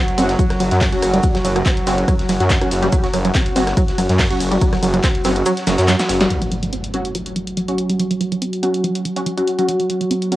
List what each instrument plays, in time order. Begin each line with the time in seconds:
Already playing: synth drone F#3 F#4
0.08 closed hi-hat
0.18 detuned saw bass F#1, synth stab F#3 C#4 F#4, synth arpeggio sound C4, open hi-hat, ride, shaker
0.29 snare, closed hi-hat
0.39 synth arpeggio sound F#3, kick, closed hi-hat, ride, shaker
0.50 cross-stick, snare, closed hi-hat
0.60 detuned saw bass F#1, synth arpeggio sound F#3, open hi-hat, ride, shaker
0.71 detuned saw bass F#2, snare, closed hi-hat
0.81 synth arpeggio sound F#3, kick, snare, clap, closed hi-hat, open hi-hat, ride
0.92 synth stab F#3 C#4 F#4, closed hi-hat
1.02 detuned saw bass F#1, cross-stick, open hi-hat, ride, shaker
1.14 synth arpeggio sound G3, closed hi-hat
1.23 synth arpeggio sound F#3, kick, closed hi-hat, ride, shaker
1.35 synth arpeggio sound F#3, snare, closed hi-hat
1.44 detuned saw bass F#1, synth arpeggio sound F#3, open hi-hat, ride, shaker
1.56 synth arpeggio sound F#3, cross-stick, closed hi-hat
1.66 synth arpeggio sound C4, kick, snare, clap, closed hi-hat, ride, shaker
1.77 closed hi-hat
1.86 detuned saw bass F#1, synth stab F#3 C#4 F#4, synth arpeggio sound C4, snare, open hi-hat, ride, shaker
1.98 closed hi-hat
2.08 synth arpeggio sound F#3, kick, cross-stick, closed hi-hat, ride, shaker
2.19 snare, closed hi-hat
2.29 detuned saw bass F#1, synth arpeggio sound F#3, snare, open hi-hat, ride, shaker
2.40 detuned saw bass F#2, synth stab F#3 C#4 F#4, closed hi-hat
2.50 synth arpeggio sound F#3, kick, snare, clap, closed hi-hat, ride, shaker
2.61 synth stab F#3 C#4 F#4, cross-stick, closed hi-hat
2.71 detuned saw bass F#1, snare, open hi-hat, ride, shaker
2.83 synth stab F#3 C#4 F#4, synth arpeggio sound G3, closed hi-hat
2.92 synth arpeggio sound F#3, kick, closed hi-hat, ride, shaker
3.03 synth arpeggio sound F#3, snare, closed hi-hat
3.14 detuned saw bass F#1, synth arpeggio sound F#3, cross-stick, open hi-hat, ride, shaker
3.25 synth arpeggio sound F#3, closed hi-hat
3.34 synth arpeggio sound C4, kick, snare, clap, closed hi-hat, ride, shaker
3.46 closed hi-hat
3.56 detuned saw bass F#1, synth stab F#3 C#4 F#4, synth arpeggio sound C4, open hi-hat, ride, shaker
3.67 cross-stick, snare, closed hi-hat
3.77 synth arpeggio sound F#3, kick, closed hi-hat, ride, shaker
3.88 snare, closed hi-hat
3.98 detuned saw bass F#1, synth arpeggio sound F#3, open hi-hat, ride, shaker
4.09 detuned saw bass F#2, snare, closed hi-hat
4.19 synth arpeggio sound F#3, kick, cross-stick, snare, clap, closed hi-hat, open hi-hat, ride
4.30 synth stab F#3 C#4 F#4, closed hi-hat
4.40 detuned saw bass F#1, open hi-hat, ride, shaker
4.52 synth arpeggio sound G3, closed hi-hat
4.61 synth arpeggio sound F#3, kick, closed hi-hat, ride, shaker
4.72 synth arpeggio sound F#3, cross-stick, snare, open hi-hat
4.83 detuned saw bass F#1, synth arpeggio sound F#3, open hi-hat, ride, shaker
4.94 synth arpeggio sound F#3, closed hi-hat
5.04 synth arpeggio sound C4, kick, snare, clap, closed hi-hat, ride, shaker
5.15 closed hi-hat
5.24 detuned saw bass F#1, synth stab F#3 C#4 F#4, synth arpeggio sound C4, cross-stick, snare, open hi-hat, ride, shaker
5.36 closed hi-hat
5.46 synth arpeggio sound F#3, closed hi-hat, ride, shaker
5.57 snare, closed hi-hat
5.67 detuned saw bass F#1, synth stab F#3 C#4 F#4, synth arpeggio sound F#3, snare, open hi-hat, ride, shaker
5.78 detuned saw bass F#2, snare, closed hi-hat, shaker
5.88 synth arpeggio sound F#3, snare, clap, closed hi-hat, ride, shaker
5.99 snare, closed hi-hat, shaker
6.09 detuned saw bass F#1, synth stab F#3 C#4 F#4, snare, open hi-hat, ride, shaker
6.21 synth arpeggio sound G3, snare, closed hi-hat
6.30 synth drone F#3 F#4, closed hi-hat, impact
6.42 synth arpeggio sound F#3, closed hi-hat
6.52 synth arpeggio sound F#3, closed hi-hat
6.63 synth arpeggio sound F#3, closed hi-hat
6.73 synth arpeggio sound C4, closed hi-hat
6.84 closed hi-hat
6.94 synth stab F#3 C#4 F#4, synth arpeggio sound C4, closed hi-hat
7.05 closed hi-hat
7.15 synth arpeggio sound F#3, closed hi-hat
7.26 closed hi-hat
7.36 synth arpeggio sound F#3, closed hi-hat
7.47 closed hi-hat
7.57 synth arpeggio sound F#3, closed hi-hat
7.68 synth stab F#3 C#4 F#4, closed hi-hat
7.78 closed hi-hat
7.89 synth arpeggio sound G3, closed hi-hat
8.00 synth arpeggio sound F#3, closed hi-hat
8.11 synth arpeggio sound F#3, closed hi-hat
8.21 synth arpeggio sound F#3, closed hi-hat
8.32 synth arpeggio sound F#3, closed hi-hat
8.42 synth arpeggio sound C4, closed hi-hat
8.53 closed hi-hat
8.63 synth stab F#3 C#4 F#4, synth arpeggio sound C4, closed hi-hat
8.74 closed hi-hat
8.84 synth arpeggio sound F#3, closed hi-hat
8.95 closed hi-hat
9.05 synth arpeggio sound F#3, closed hi-hat
9.16 synth stab F#3 C#4 F#4, closed hi-hat
9.26 synth arpeggio sound F#3, closed hi-hat
9.37 synth stab F#3 C#4 F#4, closed hi-hat
9.48 closed hi-hat
9.59 synth stab F#3 C#4 F#4, synth arpeggio sound G3, closed hi-hat
9.68 synth arpeggio sound F#3, closed hi-hat
9.80 synth arpeggio sound F#3, closed hi-hat
9.90 synth arpeggio sound F#3, closed hi-hat
10.01 synth arpeggio sound F#3, closed hi-hat
10.11 synth arpeggio sound C4, closed hi-hat
10.22 closed hi-hat
10.32 synth stab F#3 C#4 F#4, synth arpeggio sound C4, closed hi-hat